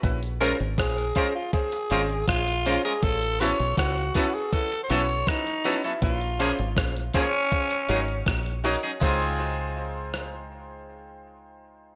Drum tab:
CC |----------------|----------------|----------------|x---------------|
HH |xxxxxxx-xxxxxxox|xxxxxxx-xxxxxxox|xxxxxxxxxxxxxxo-|----------------|
SD |----r-------r---|----r-------r---|----r-------r---|------r---------|
BD |o---o-o-o---o---|o---o-o-o---o---|o---o-o-o---o---|o---------------|